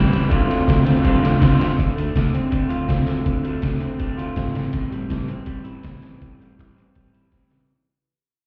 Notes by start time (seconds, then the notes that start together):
Already playing: E3 G3 C4
0.11 C#2 G3 C4 E4, ride
0.29 D2 D3 A3 C4 F4, kick, ride
0.50 D2, ride
0.68 D2, kick, snare, ride
0.84 D2 A3 C4 F4, ride
1.02 G2 D3 A3 C4 F4, kick, ride
1.20 D2 A3 C4 F4
1.25 snare, ride
1.39 D2 D3 A3 C4 F4, kick, ride
1.43 snare
1.58 A3 C4 F4, ride
1.62 snare
1.77 D2 D3, kick, closed hi-hat
1.96 D2 A3, closed hi-hat
2.16 D2 D3, kick, snare, closed hi-hat
2.34 C4, closed hi-hat
2.51 D2 A3, kick, closed hi-hat
2.69 D2 F4, closed hi-hat
2.88 D2 C4, kick, snare, closed hi-hat
3.07 D2 D3, snare, closed hi-hat
3.25 D2 D3, kick, closed hi-hat
3.43 D2 A3, closed hi-hat
3.62 D2 D3, kick, snare, closed hi-hat
3.80 C4, closed hi-hat
3.99 D2 A3, kick, closed hi-hat
4.17 D2 F4, closed hi-hat
4.36 G1 C4, kick, snare, closed hi-hat
4.55 A1 A2, snare, closed hi-hat
4.73 A1 A2, kick, closed hi-hat
4.91 A1 G3, closed hi-hat
5.09 A1 E3, kick, snare, closed hi-hat
5.28 C4, closed hi-hat
5.46 A1 G3, kick, closed hi-hat
5.64 A1 E4, closed hi-hat
5.83 A1 C4, kick, snare, closed hi-hat
6.02 A1 E3, snare, closed hi-hat
6.20 A1 A2, kick, closed hi-hat
6.39 A1 G3, closed hi-hat
6.57 A1 E3, finger snap, kick, closed hi-hat
6.76 C4, closed hi-hat
6.95 A1 G3, kick, closed hi-hat
7.13 A1 E4, closed hi-hat
7.32 A1 C4, kick, snare, closed hi-hat
7.50 A1 E3, snare, closed hi-hat